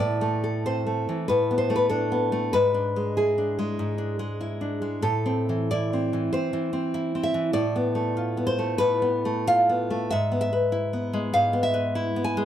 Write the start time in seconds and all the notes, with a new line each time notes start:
Already playing: D5
0.00 A2
0.21 A3
0.44 A4
0.66 C4 C5
0.87 A3
1.09 E3
1.28 A2 B4
1.51 B3
1.58 C5
1.70 A3
1.76 B4
1.89 D4 A4
2.12 B3
2.32 A3
2.53 G#2 B4
2.74 D4
2.96 G#3
3.17 E4 G#4
3.38 D4
3.59 G#3
3.79 G#2
3.98 D4
4.19 G#3
4.41 E4
4.61 D4
4.82 G#3
5.02 A2 A4
5.26 C4
5.49 E3
5.71 E4 D5
5.93 C4
6.13 E3
6.33 C4 C5
6.53 E3
6.73 C4
6.94 E4
7.15 C4
7.23 E5
7.34 E3
7.53 A2 D5
7.76 B3
7.95 A3
8.17 F4
8.37 B3
8.47 C5
8.59 A3
8.78 A2 B4
9.02 B3
9.25 A3
9.48 F4 F5
9.69 B3
9.90 A3
10.11 G#2 E5
10.32 B3
10.41 E5
10.53 B4
10.72 E4
10.93 B3
11.13 G#3
11.34 G#2 F5
11.53 B3
11.63 E5
11.74 B4
11.95 E4
12.16 B3
12.24 G#5
12.37 G#3